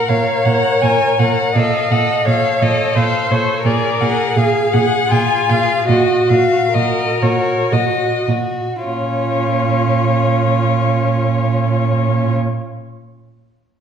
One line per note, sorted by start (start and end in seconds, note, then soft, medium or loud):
0.00 0.10 A#4 soft
0.08 0.18 A#2 soft
0.08 0.44 A#4 soft
0.08 1.55 C#5 soft
0.08 0.47 F5 soft
0.45 0.54 A#2 soft
0.45 0.81 A#4 soft
0.45 0.83 F#5 soft
0.82 0.91 A#2 soft
0.82 1.18 A#4 soft
0.82 1.20 G#5 soft
1.19 1.27 A#2 soft
1.19 1.54 A#4 soft
1.19 1.57 F#5 soft
1.55 1.63 A#2 soft
1.55 1.89 A4 soft
1.55 2.27 D#5 soft
1.55 1.93 F5 soft
1.90 2.00 A#2 soft
1.90 2.24 A4 soft
1.90 2.26 F#5 soft
2.26 2.35 A#2 soft
2.26 2.60 A4 soft
2.26 2.97 C#5 soft
2.26 2.63 F5 soft
2.61 2.70 A#2 soft
2.61 2.95 A4 soft
2.61 2.98 D#5 soft
2.95 3.04 A#2 soft
2.95 3.30 A4 soft
2.95 3.64 C5 soft
2.95 3.33 F5 soft
3.31 3.39 A#2 soft
3.31 3.65 A4 soft
3.31 3.68 C#5 soft
3.64 3.73 A#2 soft
3.64 3.99 G#4 soft
3.64 4.38 A#4 soft
3.64 4.02 D5 soft
3.99 4.09 A#2 soft
3.99 4.35 G#4 soft
3.99 4.39 F#5 soft
4.36 4.45 A#2 soft
4.36 5.10 G#4 soft
4.36 4.73 G#4 soft
4.36 4.75 F5 soft
4.73 4.82 A#2 soft
4.73 5.10 G#4 soft
4.73 5.13 F#5 medium
5.11 5.20 A#2 soft
5.11 5.87 F4 soft
5.11 5.48 G#4 soft
5.11 5.51 G#5 medium
5.49 5.58 A#2 soft
5.49 5.87 G#4 soft
5.49 5.87 F5 soft
5.87 5.97 A#2 soft
5.87 6.28 F#4 soft
5.87 6.72 F#4 soft
5.87 6.31 D#5 soft
6.29 6.38 A#2 soft
6.29 6.73 F#4 soft
6.29 6.76 F5 soft
6.73 6.83 A#2 soft
6.73 7.20 F#4 soft
6.73 7.73 A#4 soft
6.73 7.24 D#5 soft
7.21 7.31 A#2 soft
7.21 7.71 F#4 soft
7.21 7.74 C#5 soft
7.72 7.80 A#2 soft
7.72 8.27 F#4 soft
7.72 8.28 F#4 soft
7.72 8.28 D#5 soft
8.28 8.36 A#2 soft
8.28 8.83 F#4 soft
8.84 12.36 A#2 soft
8.84 12.34 C#4 soft
8.84 12.35 F4 soft
8.84 12.34 C#5 soft